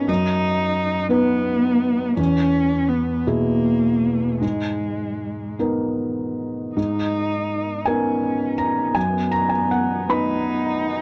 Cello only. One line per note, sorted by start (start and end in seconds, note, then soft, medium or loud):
0.08 1.11 D#4 medium
1.12 2.16 B3 medium
2.17 2.90 C#4 medium
2.89 3.29 B3 medium
3.27 4.42 A#3 medium
4.42 5.57 G#3 medium
6.75 7.90 D#4 medium
7.88 8.95 C#4 medium
8.95 10.11 B3 medium
10.09 11.02 D#4 medium